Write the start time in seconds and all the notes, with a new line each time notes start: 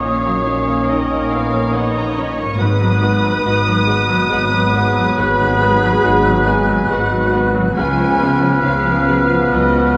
Already playing: A#1 A#2 D#3 A#3 C#4 C#5 D#6
0.02 A#2 C#4 C#5 F5
0.26 F#3
0.46 C#4
0.68 A#3
0.88 D#4 A#4 D#5
1.11 A#3
1.31 B3 F5
1.54 A#3
1.73 B3 D#4 C#5 D#5 F#5
1.95 A#3 A#5
2.16 C#4 B5
2.38 G#2 A#3 C#6
2.45 F#3
2.50 D#4
2.54 B4 D#6
2.58 G#1 G#2 F#3 B3 F#4 B4 F#6
2.81 F#3
3.02 B3 F#4 B4
3.23 F#3
3.44 G#1 G#2 D#4 F#4 B4
3.67 F#3
3.87 G#3 F#4 B4
4.08 F#3
4.29 G#1 G#2 G#3 F#4 B4
4.51 F#3
4.73 B3 F#4 G#4 B4
4.95 F#3
5.15 G#1 G#2 F#4 B4 B5
5.40 D#3
5.61 B3 F#4 B4
5.83 F#3
6.03 G#1 G#2 D#4 F#4 B4
6.25 F#3
6.44 G#3 F#4 B4 G#5
6.69 F#3
6.88 G#1 G#2 G#3 F#4 B4 F#5
7.11 F#3
7.33 B3 F#4 B4
7.55 C#3 F#3
7.63 F3
7.68 C#4
7.72 C#3 B3 B4 G#5
7.76 C#2 F3 F4 B4 F6
7.98 F3
8.21 B3 F4 B4
8.41 F3
8.63 C#2 C#3 C#4 F4 G#4 F5
8.67 B4
8.85 F3
9.08 F#3 F4 B4
9.31 F3
9.52 C#2 C#3 F#3 F4 B4 D#5
9.75 F3